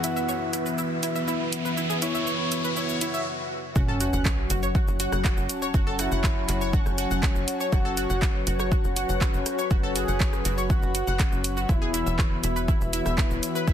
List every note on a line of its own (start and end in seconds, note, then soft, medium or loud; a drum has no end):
0.00 3.26 F#2 medium
0.00 3.26 C#3 medium
0.00 1.00 E3 medium
0.00 1.00 B3 medium
0.00 3.22 B3 medium
0.00 1.00 E4 loud
0.00 0.16 E4 loud
0.00 0.68 F#4 loud
0.00 3.22 F#4 medium
0.00 3.26 F#4 medium
0.00 3.26 B4 medium
0.00 3.22 E5 medium
0.00 3.26 E5 medium
0.00 closed hi-hat loud
0.00 riser medium
0.00 shaker medium
0.16 0.25 E5 medium
0.16 shaker soft
0.29 0.34 C#5 medium
0.29 shaker soft
0.53 0.62 E4 medium
0.53 closed hi-hat loud
0.53 shaker medium
0.66 0.71 B4 medium
0.66 shaker soft
0.78 0.90 E4 medium
0.78 shaker soft
1.03 1.74 E3 loud
1.03 1.74 B3 medium
1.03 1.15 E4 loud
1.03 1.74 E4 loud
1.03 closed hi-hat loud
1.03 shaker medium
1.16 1.24 E5 medium
1.16 shaker soft
1.28 1.33 E4 loud
1.28 shaker soft
1.53 closed hi-hat loud
1.53 shaker medium
1.65 1.70 B4 medium
1.65 shaker soft
1.77 2.98 E3 medium
1.77 2.98 B3 medium
1.77 1.89 E4 medium
1.77 2.98 E4 loud
1.77 shaker soft
1.90 2.02 G#4 loud
1.90 shaker soft
2.02 2.14 E4 loud
2.02 2.67 C#5 loud
2.02 closed hi-hat loud
2.02 shaker medium
2.15 2.23 E5 medium
2.15 shaker soft
2.27 2.32 C#5 medium
2.27 shaker soft
2.52 2.60 E4 medium
2.52 closed hi-hat loud
2.52 shaker medium
2.64 2.69 B4 medium
2.64 shaker soft
2.76 2.89 E4 medium
2.76 3.26 C#5 loud
2.76 swell medium
2.76 shaker soft
2.89 shaker soft
3.01 3.13 E4 loud
3.01 closed hi-hat loud
3.01 shaker medium
3.14 3.22 E5 medium
3.14 shaker soft
3.76 4.10 F#1 loud
3.76 4.97 F#3 medium
3.76 4.65 C#4 loud
3.76 4.97 C#4 medium
3.76 13.73 F#4 medium
3.76 4.97 F#4 loud
3.76 3.88 F#4 medium
3.76 7.68 C#5 medium
3.76 11.65 F#5 medium
3.76 kick loud
3.76 sub drop medium
3.76 shaker soft
3.88 4.00 A4 loud
4.01 4.13 F#4 loud
4.01 closed hi-hat loud
4.01 shaker medium
4.13 4.47 F#1 medium
4.13 4.21 F#5 medium
4.13 shaker soft
4.25 4.30 C#5 medium
4.25 kick loud
4.25 cross-stick medium
4.25 clap loud
4.25 shaker soft
4.43 13.52 C#5 medium
4.50 4.84 F#1 loud
4.50 4.59 F#4 medium
4.50 closed hi-hat loud
4.50 shaker medium
4.63 4.68 C#5 medium
4.63 shaker soft
4.72 4.87 F#4 medium
4.72 8.34 A5 medium
4.72 kick loud
4.72 shaker soft
4.88 5.08 F#1 loud
4.88 shaker soft
5.00 5.71 F#3 loud
5.00 5.71 C#4 medium
5.00 5.71 F#4 loud
5.00 5.12 F#4 loud
5.00 closed hi-hat loud
5.00 shaker medium
5.12 5.33 F#1 medium
5.12 5.21 F#5 medium
5.12 cross-stick medium
5.12 shaker soft
5.25 5.30 F#4 loud
5.25 kick loud
5.25 clap loud
5.25 shaker soft
5.37 5.47 F#1 medium
5.37 shaker soft
5.49 closed hi-hat loud
5.49 shaker medium
5.62 5.67 C#5 medium
5.62 shaker soft
5.74 6.08 F#1 loud
5.74 6.95 F#3 medium
5.74 6.95 C#4 medium
5.74 6.95 F#4 loud
5.74 5.86 F#4 medium
5.74 kick loud
5.74 shaker soft
5.87 5.98 A4 loud
5.99 6.75 E4 loud
5.99 6.11 F#4 loud
5.99 cross-stick soft
5.99 closed hi-hat loud
5.99 shaker medium
6.12 6.45 F#1 medium
6.12 6.20 F#5 medium
6.12 shaker soft
6.24 6.29 C#5 medium
6.24 kick loud
6.24 clap loud
6.24 shaker soft
6.49 6.83 F#1 loud
6.49 6.57 F#4 medium
6.49 clap soft
6.49 closed hi-hat loud
6.49 shaker medium
6.61 6.66 C#5 medium
6.61 shaker soft
6.73 7.63 C#4 loud
6.73 6.85 F#4 medium
6.73 kick loud
6.73 shaker soft
6.86 7.06 F#1 loud
6.86 cross-stick soft
6.86 shaker soft
6.98 7.70 F#3 loud
6.98 7.70 C#4 medium
6.98 7.70 F#4 loud
6.98 7.10 F#4 loud
6.98 closed hi-hat loud
6.98 shaker medium
7.11 7.31 F#1 medium
7.11 7.19 F#5 medium
7.11 shaker soft
7.23 7.28 F#4 loud
7.23 kick loud
7.23 clap loud
7.23 closed hi-hat medium
7.23 shaker soft
7.36 7.46 F#1 medium
7.36 shaker soft
7.48 closed hi-hat loud
7.48 shaker medium
7.60 7.65 C#5 medium
7.60 shaker soft
7.72 8.06 F#1 loud
7.72 8.94 F#3 medium
7.72 8.94 C#4 medium
7.72 8.62 F#4 loud
7.72 7.84 F#4 medium
7.72 8.94 F#4 loud
7.72 11.65 B4 medium
7.72 kick loud
7.72 cross-stick medium
7.72 shaker soft
7.85 7.97 A4 loud
7.97 8.09 F#4 loud
7.97 closed hi-hat loud
7.97 shaker medium
8.10 8.44 F#1 medium
8.10 8.18 F#5 medium
8.10 shaker soft
8.19 8.27 C#5 medium
8.19 12.50 B5 medium
8.19 kick loud
8.19 clap loud
8.19 shaker soft
8.47 8.81 F#1 loud
8.47 8.55 F#4 medium
8.47 closed hi-hat loud
8.47 shaker medium
8.59 8.64 C#5 medium
8.59 cross-stick medium
8.59 shaker soft
8.72 8.84 F#4 medium
8.72 kick loud
8.72 shaker soft
8.84 9.05 F#1 loud
8.84 shaker soft
8.96 9.68 F#3 loud
8.96 9.68 C#4 medium
8.96 9.68 F#4 loud
8.96 9.08 F#4 loud
8.96 closed hi-hat loud
8.96 shaker medium
9.09 9.30 F#1 medium
9.09 9.17 F#5 medium
9.09 shaker soft
9.21 9.26 F#4 loud
9.21 kick loud
9.21 clap loud
9.21 shaker soft
9.34 9.44 F#1 medium
9.34 shaker soft
9.46 cross-stick medium
9.46 closed hi-hat loud
9.46 shaker medium
9.59 9.64 C#5 medium
9.59 shaker soft
9.71 10.05 F#1 loud
9.71 10.92 F#3 medium
9.71 10.92 C#4 medium
9.71 9.83 F#4 medium
9.71 10.92 F#4 loud
9.71 kick loud
9.71 shaker soft
9.83 9.95 A4 loud
9.96 10.08 F#4 loud
9.96 10.60 G#4 loud
9.96 closed hi-hat loud
9.96 shaker medium
10.08 10.42 F#1 medium
10.08 10.16 F#5 medium
10.08 shaker soft
10.20 10.26 C#5 medium
10.20 kick loud
10.20 clap loud
10.20 shaker soft
10.33 cross-stick medium
10.33 shaker soft
10.45 10.79 F#1 loud
10.45 10.54 F#4 medium
10.45 clap soft
10.45 closed hi-hat loud
10.45 shaker medium
10.58 10.63 C#5 medium
10.58 shaker soft
10.70 10.82 F#4 medium
10.70 11.71 F#4 loud
10.70 kick loud
10.70 shaker soft
10.83 11.03 F#1 loud
10.83 shaker soft
10.95 11.07 F#4 medium
10.95 closed hi-hat loud
10.95 shaker medium
11.07 11.28 F#1 medium
11.07 11.12 F#5 loud
11.07 shaker soft
11.20 11.66 F#3 medium
11.20 11.66 C#4 medium
11.20 11.66 F#4 loud
11.20 11.28 F#4 medium
11.20 kick loud
11.20 cross-stick medium
11.20 clap loud
11.20 closed hi-hat medium
11.20 shaker soft
11.32 11.66 F#1 loud
11.32 shaker soft
11.44 closed hi-hat loud
11.44 shaker medium
11.57 11.69 F#4 medium
11.57 shaker soft
11.69 12.03 E1 loud
11.69 12.90 E3 medium
11.69 12.90 B3 medium
11.69 12.59 E4 loud
11.69 12.90 E4 loud
11.69 11.81 E4 medium
11.69 13.73 F#4 medium
11.69 13.73 E5 medium
11.69 13.73 B5 medium
11.69 kick loud
11.69 shaker soft
11.82 11.93 G#4 loud
11.94 12.06 E4 loud
11.94 closed hi-hat loud
11.94 shaker medium
12.07 12.40 E1 medium
12.07 13.73 B4 medium
12.07 12.15 E5 medium
12.07 shaker soft
12.19 12.24 C#5 medium
12.19 kick loud
12.19 cross-stick medium
12.19 clap loud
12.19 shaker soft
12.27 13.73 E5 medium
12.44 12.78 E1 loud
12.44 12.52 E4 medium
12.44 closed hi-hat loud
12.44 shaker medium
12.56 12.61 B4 medium
12.56 shaker soft
12.68 12.80 E4 medium
12.68 kick loud
12.68 shaker soft
12.81 13.01 E1 loud
12.81 shaker soft
12.93 13.65 E3 loud
12.93 13.65 B3 medium
12.93 13.65 E4 loud
12.93 13.05 E4 loud
12.93 closed hi-hat loud
12.93 shaker medium
13.06 13.26 E1 medium
13.06 13.14 E5 medium
13.06 cross-stick medium
13.06 shaker soft
13.18 13.23 E4 loud
13.18 kick loud
13.18 clap loud
13.18 shaker soft
13.31 13.41 E1 medium
13.31 shaker soft
13.43 closed hi-hat loud
13.43 shaker medium
13.55 13.60 B4 medium
13.55 shaker soft
13.68 13.73 E1 loud
13.68 13.73 E3 medium
13.68 13.73 B3 medium
13.68 13.73 E4 medium
13.68 13.73 E4 loud
13.68 kick loud
13.68 shaker soft